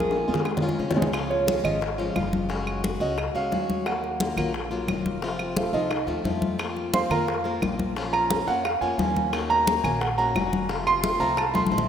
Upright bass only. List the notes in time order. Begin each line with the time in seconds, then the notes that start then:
Already playing: A#1
0.28 F2
0.79 C#2
1.64 G#1
2.15 F#1
3.00 C#2
3.34 C#2
3.51 D#2
4.37 A#1
4.87 F1
5.73 C2
6.07 D#2
6.24 F2
7.10 F2
7.61 A#1
8.47 F2
8.81 F2
8.98 D#2
9.84 A#1
10.35 F1
11.20 C2
11.71 A#1